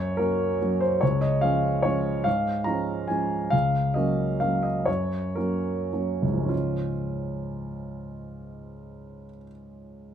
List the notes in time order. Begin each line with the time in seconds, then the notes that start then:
Already playing: F#2 C#5
0.17 F#3 A#3 C#4 A#4
0.62 F#3 A#3 C#4
0.81 C5
1.01 C#2 C#5
1.21 D#5
1.41 F3 G#3 C#4 F5
1.82 F3 G#3 C#4 C#5
2.24 G#2 F5
2.64 F3 G#3 C#4 A#5
3.08 F3 G#3 C#4 G#5
3.50 C#2 F5
3.94 F#3 A#3 C#4 D#5
4.40 F#3 A#3 C#4 F5
4.63 D#5
4.86 F#2 C#5
5.35 F#3 A#3 C#4 A#4
5.93 F#3 A#3 C#4
6.22 C#2
6.27 G#2
6.33 F3
6.39 G#3
6.45 C#4 F4